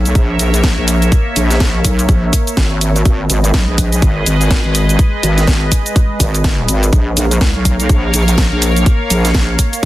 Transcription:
Already playing: B1 A#3 A#4 C#5 E5
0.05 closed hi-hat, cabasa
0.15 A#1, kick, closed hi-hat, cabasa
0.39 A#1, open hi-hat, cabasa
0.54 closed hi-hat, cabasa
0.64 kick, snare, closed hi-hat, cabasa
0.78 A#1
0.88 open hi-hat, cabasa
1.02 closed hi-hat, cabasa
1.12 kick, closed hi-hat, cabasa
1.36 A#1, open hi-hat, cabasa
1.51 snare, closed hi-hat, cabasa
1.60 kick, snare, cabasa
1.85 B1, kick, open hi-hat, cabasa
1.99 closed hi-hat, cabasa
2.09 A#1, kick, closed hi-hat, cabasa
2.33 kick, open hi-hat, cabasa
2.47 closed hi-hat, cabasa
2.57 G#1, kick, snare, closed hi-hat, cabasa
2.81 open hi-hat, cabasa
2.96 closed hi-hat, cabasa
3.05 G#1 G#3 G#4 B4 D#5, kick, closed hi-hat, cabasa
3.30 G#1, open hi-hat, cabasa
3.44 closed hi-hat, cabasa
3.54 B1, kick, snare, cabasa
3.68 A#1
3.78 kick, open hi-hat, cabasa
3.92 closed hi-hat, cabasa
4.02 G#1, kick, closed hi-hat, cabasa
4.26 G#1, open hi-hat, cabasa
4.41 closed hi-hat, cabasa
4.51 kick, snare, closed hi-hat, cabasa
4.65 G#1
4.75 open hi-hat, cabasa
4.89 closed hi-hat, cabasa
4.99 kick, closed hi-hat, cabasa
5.23 G#1, open hi-hat, cabasa
5.38 snare, closed hi-hat, cabasa
5.47 kick, snare, cabasa
5.72 kick, open hi-hat, cabasa
5.86 closed hi-hat, cabasa
5.96 kick, closed hi-hat, cabasa
6.20 G#1, kick, open hi-hat, cabasa
6.34 closed hi-hat, cabasa
6.44 kick, snare, closed hi-hat, cabasa
6.68 G#1, open hi-hat, cabasa
6.83 closed hi-hat, cabasa
6.92 A#1 A#3 A#4 C#5 F5, kick, closed hi-hat, cabasa
7.17 A#1, open hi-hat, cabasa
7.31 closed hi-hat, cabasa
7.41 C#2, kick, snare, cabasa
7.55 B1
7.65 kick, open hi-hat, cabasa
7.80 closed hi-hat, cabasa
7.89 A#1, kick, closed hi-hat, cabasa
8.14 A#1, open hi-hat, cabasa
8.28 closed hi-hat, cabasa
8.38 kick, snare, closed hi-hat, cabasa
8.52 A#1
8.62 open hi-hat, cabasa
8.76 closed hi-hat, cabasa
8.86 kick, closed hi-hat, cabasa
9.10 A#1, open hi-hat, cabasa
9.25 snare, closed hi-hat, cabasa
9.35 kick, snare, closed hi-hat, cabasa
9.59 kick, open hi-hat, cabasa
9.73 closed hi-hat, cabasa

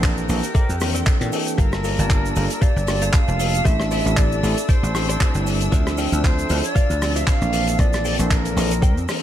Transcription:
Already playing: A#1 E3 A#3 C4 D4 G4 A4 G5
0.03 A#4, kick, clap, closed hi-hat, cabasa, shaker
0.17 shaker
0.29 A#1 E3 A#3 C4 D4 A4, muted clean electric guitar stroke, open hi-hat, cabasa
0.43 closed hi-hat, cabasa, shaker
0.54 A4 C5 D5 E5, kick, closed hi-hat, cabasa, shaker
0.69 F2, shaker
0.80 E3 A#3 C4 D4, cross-stick, open hi-hat, cabasa
0.94 A4 C5 D5 G5, closed hi-hat, cabasa, shaker
1.06 kick, clap, closed hi-hat, cabasa, shaker
1.21 A#2 E3 A#3 C4 D4 A4, closed hi-hat, shaker
1.32 E3 A#3 C4 D4 A4, open hi-hat, cabasa
1.47 closed hi-hat, cabasa, shaker
1.58 G1 A#3 D4 F4 G4 A4 A#4 F5 A5 E6, kick, closed hi-hat, cabasa, shaker
1.72 cross-stick, shaker
1.84 G4 A4 A#4 F5, open hi-hat, cabasa
1.99 G1 G3 A#3 D4 F4 A5, closed hi-hat, cabasa, shaker
2.10 kick, clap, closed hi-hat, cabasa, shaker
2.26 shaker
2.36 G1 G3 A#3 D4 F4 A4, muted clean electric guitar stroke, open hi-hat, cabasa
2.49 closed hi-hat, cabasa, shaker
2.61 G4 A4 A#4 D5 F5, muted slap bass stroke, kick, closed hi-hat, cabasa, shaker
2.76 G1, shaker
2.87 G3 A#3 D4 F4 G4, cross-stick, open hi-hat, cabasa
3.02 G4 A4 A#4 F5, closed hi-hat, cabasa, shaker
3.13 F5, kick, clap, closed hi-hat, cabasa, shaker
3.28 F1 G3 A#3 D4 F4 A5, shaker
3.40 open hi-hat, cabasa
3.54 closed hi-hat, cabasa, shaker
3.65 A1 G3 A3 C4 E4 G4 A4 C5 E5, kick, closed hi-hat, cabasa, shaker
3.80 cross-stick, shaker
3.91 G4 A4 C5 D5 E5, open hi-hat, cabasa
4.05 A1 G3 A3 C4 E4 A4, closed hi-hat, cabasa, shaker
4.17 D5, kick, clap, closed hi-hat, cabasa, shaker
4.32 shaker
4.43 A1 G3 A3 C4 E4 A4, muted clean electric guitar stroke, open hi-hat, cabasa
4.58 closed hi-hat, cabasa, shaker
4.69 G4 A4 C5 D5, kick, closed hi-hat, cabasa, shaker
4.83 A1, shaker
4.94 G3 A3 C4 E4 G4, cross-stick, open hi-hat, cabasa
5.09 G4 A4 C5 D5, closed hi-hat, cabasa, shaker
5.21 kick, clap, closed hi-hat, cabasa, shaker
5.34 G1 G3 A3 C4 E4 A4, shaker
5.47 open hi-hat, cabasa
5.60 closed hi-hat, cabasa, shaker
5.72 D2 F3 C4 D4 F4 A4 C5 D5 E5, kick, closed hi-hat, cabasa, shaker
5.87 cross-stick, shaker
5.98 F4 C5 D5 G5, open hi-hat, cabasa
6.12 D2 F3 C4 D4 A4 E5, closed hi-hat, cabasa, shaker
6.24 C5, kick, clap, closed hi-hat, cabasa, shaker
6.39 shaker
6.49 D2 F3 C4 D4 E4 A4, muted clean electric guitar stroke, open hi-hat, cabasa
6.64 D5, closed hi-hat, cabasa, shaker
6.75 F4 C5 D5 F5, muted slap bass stroke, kick, closed hi-hat, cabasa, shaker
6.90 D2, shaker
7.01 F3 C4 D4 G4, cross-stick, open hi-hat, cabasa
7.15 F4 C5 D5 E5 F5, closed hi-hat, cabasa, shaker
7.27 F5, kick, clap, closed hi-hat, cabasa, shaker
7.42 A#1 E3 A#3 C4 D4 A4, shaker
7.53 A4 C5 D5 E5, open hi-hat, cabasa
7.67 closed hi-hat, cabasa, shaker
7.78 A#1 E3 A#3 C4 D4 A4 D5, kick, closed hi-hat, cabasa, shaker
7.93 cross-stick, closed hi-hat, shaker
8.05 A4 C5 D5 G5, open hi-hat, cabasa
8.19 A#1 E3 A#3 C4 D4 A4 C5, closed hi-hat, cabasa, shaker
8.30 A#4, kick, clap, closed hi-hat, cabasa, shaker
8.45 closed hi-hat, shaker
8.56 A#1 E3 A#3 C4 D4 A4, muted clean electric guitar stroke, open hi-hat, cabasa
8.71 closed hi-hat, cabasa, shaker
8.82 A4 C5 D5 G5, kick, closed hi-hat, cabasa, shaker
8.97 F2, shaker
9.08 E3 A#3 C4 D4, cross-stick, open hi-hat, cabasa

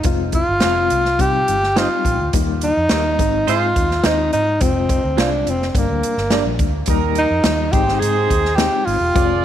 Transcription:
0.03 F1 G#3 C4 F4, kick, closed hi-hat
0.32 F4, kick, closed hi-hat
0.49 G1
0.60 F1 G#3 C4 F4 G#4 C5, snare, closed hi-hat
0.64 F5
0.90 C2, closed hi-hat
1.05 snare
1.18 C3 G3 C4 D#4 G4, kick, closed hi-hat
1.48 G1, closed hi-hat
1.63 snare
1.76 G3 C4 D#4 F4 G4 C5 D#5, snare, closed hi-hat
2.05 A#1, kick, closed hi-hat
2.20 D2
2.33 D#2 G3 A#3 D#4, kick, closed hi-hat
2.61 D#4, closed hi-hat
2.77 F2
2.89 D#2 G3 A#3 D#4 G4 A#4 D#5, snare, closed hi-hat
3.19 G#1 G#3 C4 D#4, kick, closed hi-hat
3.47 G#2 D#4 F4 G#4 C5, closed hi-hat
3.76 D#2, kick, closed hi-hat
3.91 snare
4.04 D#2 G#3 C4 D#4 G#4 C5 D#5, snare, closed hi-hat
4.33 G#2 D#4, closed hi-hat
4.60 F1 G#3 C4 F4, kick, closed hi-hat
4.89 kick, closed hi-hat
5.04 D2
5.17 C2 G#3 C4 D4 F4 G#4 C5 F5, snare, closed hi-hat
5.46 F1 C4, closed hi-hat
5.62 snare
5.69 C4
5.74 G1 G3 A#3 D4, kick, closed hi-hat
5.88 D2
6.03 closed hi-hat
6.17 G1, snare
6.30 G3 A#3 D4 G4 A#4 D5, snare, closed hi-hat
6.45 A#1
6.59 D2, kick, closed hi-hat
6.86 D#2 G3 A#3 D#4 G4 A#4, kick, closed hi-hat
7.15 D#4, closed hi-hat
7.31 F2
7.44 D#2 G3 A#3 D#4, snare, closed hi-hat
7.72 G#1 G#3 C4 D#4 G4 G#4 C5, kick, closed hi-hat
7.88 snare
7.95 G4 G#4
8.01 G#2, closed hi-hat
8.30 D#2, kick, closed hi-hat
8.45 snare
8.55 G#3 C4 G4, snare, closed hi-hat
8.59 D#4
8.86 G#1 F4, open hi-hat
9.01 E1
9.14 F1 G#3 C4 F4 G#4 D5, kick, closed hi-hat

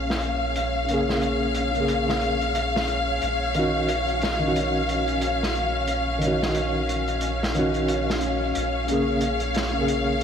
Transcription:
Already playing: A#1 C#3 A#3 C#4 G#4 C#5 F5
0.10 snare
0.21 closed hi-hat
0.56 closed hi-hat
0.85 C#3, closed hi-hat
0.89 A#3
0.93 G#4
1.09 snare
1.21 closed hi-hat
1.55 closed hi-hat
1.71 C#3, closed hi-hat
1.76 A#3
1.80 G#4
1.88 closed hi-hat
2.09 snare
2.21 closed hi-hat
2.41 closed hi-hat
2.55 closed hi-hat
2.76 snare
2.88 closed hi-hat
3.22 A#1, closed hi-hat
3.54 D#3 C#4, closed hi-hat
3.59 F#4
3.88 closed hi-hat
4.08 closed hi-hat
4.22 snare, closed hi-hat
4.39 D#3
4.43 C#4
4.47 F#4
4.56 closed hi-hat
4.89 closed hi-hat
5.08 closed hi-hat
5.21 closed hi-hat
5.43 snare
5.55 closed hi-hat
5.87 closed hi-hat
6.18 D#3, closed hi-hat
6.23 C#4
6.27 F#4
6.42 snare
6.55 closed hi-hat
6.89 closed hi-hat
7.08 closed hi-hat
7.21 closed hi-hat
7.43 snare
7.54 D#3 C#4, closed hi-hat
7.59 F#4
7.74 closed hi-hat
7.88 closed hi-hat
8.10 snare
8.21 closed hi-hat
8.55 A#1 F5, closed hi-hat
8.87 C#3 A#3, closed hi-hat
8.91 G#4
9.21 closed hi-hat
9.40 closed hi-hat
9.54 snare, closed hi-hat
9.72 C#3
9.76 A#3
9.81 G#4
9.88 closed hi-hat

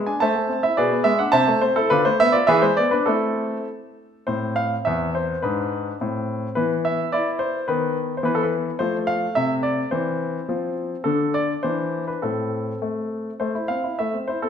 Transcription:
0.06 D4 G#5
0.20 A3 C5 E5 A5
0.36 A3
0.49 C4
0.63 E4 E5
0.77 B2 G#4 B4 D5
0.92 B3
1.04 G#3 E5
1.19 D4 F#5
1.32 C3 C5 E5 A5
1.48 A3
1.61 C4 C5
1.76 E4 A4
1.90 D3 D4 F4 B4
2.05 A3 C5
2.20 B3 E5
2.32 F4 D5
2.47 E3 G#4 B4 E5
2.62 G#3 C5
2.77 B3 D5
2.91 D4 B4
3.06 A3 C4 E4 A4
4.27 A2 C4 C5
4.56 F5
4.85 E2 E5
5.15 C5
5.42 G#2 D4 B4
6.01 A2 C4
6.55 E3 B3 B4
6.85 E5
7.12 E4 D5
7.39 C5
7.68 D#3 B3 B4
8.17 C5
8.23 E3 B3 B4
8.35 A4
8.43 B4
8.79 F3 A3 C5
9.07 F5
9.35 C3 E5
9.63 D5
9.91 E3 C4 C5
10.48 F3 C4
11.04 D3 D4 A4
11.34 D5
11.63 E3 D4 C5
12.08 B4
12.22 A2 C4 A4
12.82 A3
13.40 A3 C5
13.55 E4
13.68 C4 F5
13.84 E4
13.99 A3 E5
14.14 C4
14.28 E4 C5
14.42 C4 A4

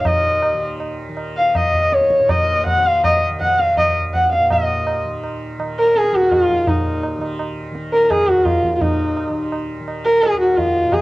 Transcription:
Already playing: D#2 D#3
0.00 A#2
0.05 D#5, tabla na, tabla ge
0.42 tabla na
0.53 D#3
0.80 tabla na
1.09 D#3
1.17 tabla na
1.37 F5
1.49 F5
1.55 D#5, tabla na, tabla ge
1.65 D#2
1.74 tabla ge
1.92 C#5, tabla te
2.01 tabla te
2.10 tabla ke
2.19 A#2, tabla te
2.29 D#5, tabla na, tabla ge
2.66 F#5, tabla tin, tabla ge
2.75 D#3
2.85 F5, tabla te
3.04 D#5, tabla na, tabla ge
3.30 D#3
3.41 F#5, tabla tin, tabla ge
3.59 F5, tabla te
3.77 D#5, tabla na, tabla ge
3.85 D#2
4.14 F#5, tabla tin, tabla ge
4.32 F5, tabla te
4.39 A#2
4.50 A#2 D#5, tabla na, tabla ge
4.87 tabla na
5.04 D#3
5.24 tabla na
5.58 D#3, tabla na
5.80 A#4
5.96 G#4, tabla te
6.04 tabla te
6.12 D#2 F#4, tabla ke
6.22 tabla te
6.31 F4, tabla na, tabla ge
6.49 tabla ge
6.65 A#2 D#4, tabla na, tabla ge
7.03 tabla na
7.18 D#3, tabla na
7.39 tabla na
7.71 D#3, tabla te
7.93 A#4, tabla te
8.05 A#4
8.11 G#4, tabla na, tabla ge
8.24 D#2
8.28 F#4, tabla te
8.46 F4, tabla na, tabla ge
8.64 tabla ge
8.75 A#2 F4
8.81 D#4, tabla na, tabla ge
9.17 tabla na
9.30 D#3
9.52 tabla na
9.80 D#3
9.88 tabla na
10.05 A#4
10.23 G#4, tabla tin
10.33 D#2
10.41 F#4
10.57 F4, tabla tin, tabla ge
10.84 A#2
10.92 G#4, tabla na, tabla ge

